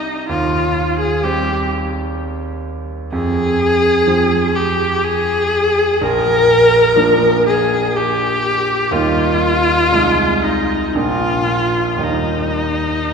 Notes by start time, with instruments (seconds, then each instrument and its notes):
Already playing: grand piano G3 C4, viola D#4
0.29 grand piano D#2, viola F4
0.99 viola G#4
1.23 grand piano G3 C4, viola G4
3.12 grand piano F2, viola G#4
4.07 grand piano F3 C4
4.55 viola G4
5.04 viola G#4
6.01 grand piano A#1, viola A#4
6.96 grand piano F3 A#3 D4
7.47 viola G#4
7.96 viola G4
8.91 grand piano D#2 G3 A#3 D#4, viola F4
9.92 grand piano C2 G#3 D#4
10.44 viola D#4
10.95 grand piano A#1 F3 A#3 D4, viola F4
11.96 grand piano D#2 G3 A#3 D#4
12.03 viola D#4